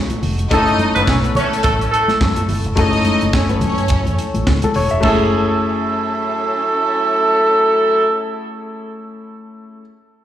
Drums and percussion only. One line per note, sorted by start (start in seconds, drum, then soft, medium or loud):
0.10 closed hi-hat medium
0.10 muted conga soft
0.10 high conga medium
0.23 open hi-hat medium
0.23 low conga medium
0.39 closed hi-hat medium
0.51 kick loud
0.51 closed hi-hat medium
0.51 muted conga soft
0.68 closed hi-hat soft
0.79 closed hi-hat medium
0.79 high conga medium
0.96 closed hi-hat medium
1.07 kick loud
1.07 snare loud
1.24 closed hi-hat soft
1.24 muted conga soft
1.35 closed hi-hat medium
1.35 high conga medium
1.35 low conga medium
1.53 closed hi-hat medium
1.63 kick loud
1.63 closed hi-hat loud
1.63 muted conga soft
1.79 closed hi-hat medium
1.79 muted conga soft
1.94 closed hi-hat medium
2.08 snare soft
2.08 closed hi-hat soft
2.08 high conga medium
2.21 kick loud
2.21 snare loud
2.21 muted conga soft
2.21 high conga medium
2.36 closed hi-hat medium
2.36 muted conga soft
2.36 high conga medium
2.49 open hi-hat medium
2.49 low conga medium
2.64 closed hi-hat soft
2.77 kick loud
2.77 closed hi-hat medium
2.93 closed hi-hat soft
2.93 muted conga soft
3.05 closed hi-hat medium
3.05 high conga medium
3.21 closed hi-hat medium
3.33 kick loud
3.33 snare loud
3.33 muted conga soft
3.49 closed hi-hat soft
3.49 muted conga soft
3.61 closed hi-hat medium
3.61 high conga medium
3.61 low conga medium
3.78 closed hi-hat medium
3.88 kick loud
3.88 closed hi-hat loud
3.88 muted conga soft
4.05 closed hi-hat soft
4.05 muted conga soft
4.19 closed hi-hat medium
4.34 closed hi-hat soft
4.34 high conga medium
4.47 kick loud
4.47 snare loud
4.47 muted conga soft
4.47 high conga medium
4.62 closed hi-hat medium
4.62 muted conga soft
4.62 high conga medium
4.62 low conga medium
4.74 open hi-hat medium
4.74 low conga medium
4.90 closed hi-hat soft
5.03 kick loud
5.03 crash medium
5.03 high conga medium